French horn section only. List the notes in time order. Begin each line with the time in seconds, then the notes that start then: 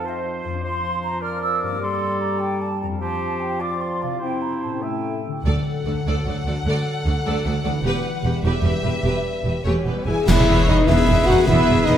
Already playing: F3
0.63 F3
1.81 G3
3.01 F3
4.22 C4
4.83 A3
5.45 F#3 A4
7.85 G3 B4
9.65 C#4
9.84 B3
10.06 G#4
10.30 E4
10.69 D#4
10.87 E4
11.25 F#4
11.47 E4
11.85 D#4